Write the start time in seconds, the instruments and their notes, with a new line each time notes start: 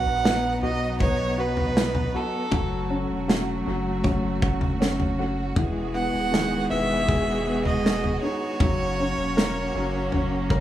Already playing: string section F#3 B3 D#4, felt piano B3 F#4, violin F#5
0.06 sub bass A#1
0.24 felt piano B3, snare
0.63 sub bass B1, felt piano F#4, violin D#5
1.00 sub bass B1, felt piano B3, violin C#5, kick, floor tom
1.38 felt piano F#4, violin B4
1.57 floor tom
1.76 felt piano B3, snare
1.95 floor tom
2.14 felt piano F#4, violin A4
2.52 sub bass F#1, felt piano F#3, string section F#3 A3 F#4, kick, floor tom
2.90 felt piano C#4
3.10 sub bass E1
3.28 felt piano F#4, snare
3.66 sub bass F#1, felt piano F#3
4.04 sub bass F#1, felt piano C#4, kick, floor tom
4.42 felt piano F#4, kick
4.61 floor tom
4.80 felt piano C#4, snare
5.00 floor tom
5.19 felt piano F#4
5.56 sub bass E1, felt piano E3, string section G#3 B3 G#4, kick, floor tom
5.94 felt piano B3, violin F#5
6.14 sub bass D#1
6.32 felt piano D#3, snare
6.70 sub bass E1, felt piano B4, violin E5
7.08 sub bass E1, felt piano G#4, kick, floor tom
7.46 felt piano B3
7.65 violin D#5, floor tom
7.85 felt piano G#4, snare
8.04 floor tom
8.23 felt piano D#4, violin C#5
8.60 sub bass F#1, felt piano F#3, string section A#3 C#4, kick, floor tom
8.99 felt piano C#4
9.17 sub bass E1
9.37 felt piano A#4, snare
9.74 sub bass F#1, felt piano F#3
10.12 sub bass F#1, felt piano C#4, floor tom
10.50 felt piano A#4 A#5, kick